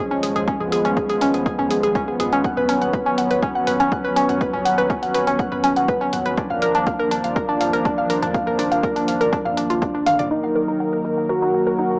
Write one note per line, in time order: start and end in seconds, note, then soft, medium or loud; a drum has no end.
0.00 2.40 F3 medium
0.00 2.40 G#3 medium
0.00 0.46 C#4 medium
0.11 0.20 D#1 medium
0.11 0.19 C#4 loud
0.23 0.33 D#1 medium
0.23 0.28 G#4 medium
0.23 open hi-hat loud
0.36 0.45 D#1 medium
0.36 0.44 G#4 loud
0.36 closed hi-hat soft
0.36 mid tom medium
0.47 0.57 D#1 loud
0.47 6.34 B3 medium
0.47 0.56 C#4 loud
0.47 kick loud
0.47 closed hi-hat soft
0.60 0.69 C#2 medium
0.60 0.65 G#4 medium
0.60 mid tom medium
0.72 0.82 D#1 medium
0.72 0.81 G#4 loud
0.72 open hi-hat loud
0.85 0.94 D#1 medium
0.85 0.93 C#4 loud
0.85 closed hi-hat soft
0.97 1.07 D#1 loud
0.97 1.02 G#4 medium
0.97 kick loud
0.97 closed hi-hat soft
1.09 1.19 D#1 medium
1.09 1.18 G#4 loud
1.09 open hi-hat medium
1.21 1.31 D#1 medium
1.21 1.30 C#4 loud
1.21 open hi-hat loud
1.34 1.43 D#1 medium
1.34 1.39 G#4 medium
1.34 closed hi-hat soft
1.46 1.56 D#1 loud
1.46 1.55 G#4 loud
1.46 kick loud
1.46 closed hi-hat soft
1.59 1.68 D#1 medium
1.59 1.67 C#4 loud
1.59 mid tom loud
1.70 1.80 D#1 medium
1.70 1.76 G#4 medium
1.70 open hi-hat loud
1.83 1.92 D#1 medium
1.83 1.92 G#4 loud
1.83 closed hi-hat soft
1.95 2.05 C#2 loud
1.95 2.04 C#4 loud
1.95 kick loud
1.95 closed hi-hat soft
2.08 2.17 D#1 medium
2.08 2.13 G#4 medium
2.20 2.29 D#1 loud
2.20 2.29 G#4 loud
2.20 mid tom medium
2.20 open hi-hat loud
2.32 2.42 D#1 medium
2.32 2.41 C#4 loud
2.32 closed hi-hat soft
2.44 2.54 D#1 loud
2.44 6.34 F#3 medium
2.44 6.34 C#4 medium
2.44 2.53 F#5 medium
2.44 kick loud
2.44 closed hi-hat soft
2.57 2.66 C#2 medium
2.57 2.65 B4 loud
2.57 mid tom medium
2.69 2.79 D#1 medium
2.69 2.78 C#4 loud
2.69 open hi-hat loud
2.82 2.91 D#1 medium
2.82 2.90 F#5 medium
2.82 closed hi-hat soft
2.93 3.03 D#1 loud
2.93 3.02 B4 medium
2.93 kick loud
2.93 closed hi-hat soft
3.06 3.15 D#1 medium
3.06 3.15 C#4 loud
3.18 3.28 D#1 medium
3.18 3.27 F#5 medium
3.18 open hi-hat loud
3.31 3.40 D#1 medium
3.31 3.39 B4 medium
3.31 closed hi-hat soft
3.42 3.52 D#1 loud
3.42 3.52 C#4 loud
3.42 kick loud
3.42 closed hi-hat soft
3.55 3.65 D#1 medium
3.55 3.64 F#5 medium
3.67 3.77 D#1 medium
3.67 3.76 B4 loud
3.67 mid tom medium
3.67 open hi-hat loud
3.80 3.89 D#1 medium
3.80 3.88 C#4 loud
3.80 closed hi-hat soft
3.92 4.02 D#1 medium
3.92 4.01 F#5 medium
3.92 kick loud
3.92 closed hi-hat soft
4.04 4.14 D#1 medium
4.04 4.13 B4 loud
4.16 4.26 D#1 medium
4.16 4.25 C#4 loud
4.16 open hi-hat loud
4.29 4.38 D#1 medium
4.29 4.37 F#5 medium
4.29 closed hi-hat soft
4.29 mid tom loud
4.41 4.51 D#1 loud
4.41 4.50 B4 loud
4.41 kick loud
4.41 closed hi-hat soft
4.54 4.63 C#2 medium
4.54 4.62 C#4 loud
4.54 mid tom medium
4.65 4.75 D#1 medium
4.65 4.74 F#5 medium
4.65 open hi-hat loud
4.78 4.87 D#1 medium
4.78 4.87 B4 loud
4.78 closed hi-hat soft
4.90 5.00 D#1 loud
4.90 4.99 C#4 medium
4.90 kick loud
4.90 closed hi-hat soft
5.03 5.12 D#1 medium
5.03 5.11 F#5 medium
5.03 open hi-hat medium
5.15 5.25 D#1 loud
5.15 5.24 B4 loud
5.15 open hi-hat loud
5.27 5.37 D#1 medium
5.27 5.36 C#4 medium
5.27 closed hi-hat soft
5.39 5.49 D#1 loud
5.39 5.48 F#5 medium
5.39 kick loud
5.39 closed hi-hat soft
5.52 5.61 D#1 medium
5.52 5.60 B4 loud
5.52 mid tom loud
5.64 5.74 D#1 loud
5.64 5.73 C#4 loud
5.64 open hi-hat loud
5.76 5.86 D#1 medium
5.76 5.85 F#5 medium
5.76 closed hi-hat soft
5.88 5.98 D#1 loud
5.88 5.97 B4 loud
5.88 kick loud
5.88 closed hi-hat soft
6.01 6.10 D#1 medium
6.01 6.10 C#4 loud
6.13 6.23 D#1 medium
6.13 6.22 F#5 medium
6.13 mid tom medium
6.13 open hi-hat loud
6.26 6.35 D#1 medium
6.26 6.34 B4 loud
6.26 closed hi-hat soft
6.38 6.48 D#1 loud
6.38 10.27 F3 medium
6.38 10.27 A#3 medium
6.38 6.47 D4 loud
6.38 10.27 D4 medium
6.38 kick loud
6.38 closed hi-hat soft
6.50 6.60 D#1 medium
6.50 6.59 F5 medium
6.50 mid tom medium
6.62 6.72 D#1 medium
6.62 6.71 A#4 loud
6.62 open hi-hat loud
6.75 6.84 D#1 medium
6.75 6.83 D4 loud
6.75 closed hi-hat soft
6.87 6.97 D#1 loud
6.87 6.96 F5 medium
6.87 kick loud
6.87 closed hi-hat soft
7.00 7.09 D#1 medium
7.00 7.08 A#4 loud
7.11 7.21 D#1 loud
7.11 7.20 D4 loud
7.11 open hi-hat loud
7.24 7.33 D#1 medium
7.24 7.33 F5 medium
7.24 closed hi-hat soft
7.36 7.46 D#1 loud
7.36 7.45 A#4 loud
7.36 kick loud
7.36 closed hi-hat soft
7.49 7.58 D#1 medium
7.49 7.57 D4 loud
7.61 7.71 D#1 medium
7.61 7.70 F5 medium
7.61 mid tom medium
7.61 open hi-hat loud
7.73 7.83 D#1 medium
7.73 7.82 A#4 loud
7.73 closed hi-hat soft
7.85 7.95 D#1 loud
7.85 7.94 D4 loud
7.85 kick loud
7.85 closed hi-hat soft
7.98 8.07 D#1 medium
7.98 8.06 F5 medium
8.10 8.20 D#1 loud
8.10 8.19 A#4 loud
8.10 open hi-hat loud
8.22 8.32 D#1 medium
8.22 8.31 D4 loud
8.22 closed hi-hat soft
8.22 mid tom loud
8.34 8.44 D#1 loud
8.34 8.43 F5 medium
8.34 kick loud
8.34 closed hi-hat soft
8.47 8.56 D#1 medium
8.47 8.55 A#4 loud
8.47 mid tom medium
8.59 8.69 D#1 medium
8.59 8.68 D4 loud
8.59 open hi-hat loud
8.72 8.81 D#1 medium
8.72 8.80 F5 medium
8.72 closed hi-hat soft
8.83 8.93 D#1 loud
8.83 8.92 A#4 loud
8.83 kick loud
8.83 closed hi-hat soft
8.96 9.06 D#1 medium
8.96 9.05 D4 medium
8.96 open hi-hat medium
9.08 9.18 D#1 loud
9.08 9.17 F5 medium
9.08 open hi-hat loud
9.21 9.30 D#1 medium
9.21 9.29 A#4 loud
9.21 closed hi-hat soft
9.33 9.43 D#1 loud
9.33 9.42 D4 loud
9.33 kick loud
9.33 closed hi-hat soft
9.45 9.55 D#1 medium
9.45 9.54 F5 medium
9.45 mid tom medium
9.57 9.67 D#1 medium
9.57 9.69 D4 medium
9.57 open hi-hat loud
9.70 9.79 D#1 medium
9.70 9.78 F4 medium
9.70 closed hi-hat soft
9.82 9.92 D#1 loud
9.82 9.91 D4 medium
9.82 kick loud
9.82 closed hi-hat soft
9.95 10.04 D#1 medium
9.95 10.03 D4 medium
10.06 10.16 D#1 medium
10.06 10.12 F5 loud
10.06 mid tom medium
10.06 open hi-hat loud
10.06 high tom medium
10.19 10.28 D#1 medium
10.19 10.28 D5 medium
10.19 closed hi-hat soft
10.19 mid tom medium
10.31 11.99 D#2 medium
10.31 11.99 D#3 medium
10.31 11.99 F#3 medium
10.31 11.99 A#3 medium
10.31 11.20 D#4 loud
10.31 10.40 D#4 medium
10.31 11.99 A#4 medium
10.44 10.52 F#5 medium
10.56 10.65 A#4 loud
10.68 10.77 D#4 loud
10.80 10.89 F#5 medium
10.93 11.01 A#4 medium
11.05 11.14 D#4 medium
11.18 11.26 F#5 medium
11.29 11.99 F#4 loud
11.29 11.38 A#4 loud
11.42 11.51 D#4 loud
11.54 11.63 F#5 medium
11.67 11.75 A#4 loud
11.78 11.88 D#4 loud
11.91 11.99 F#5 medium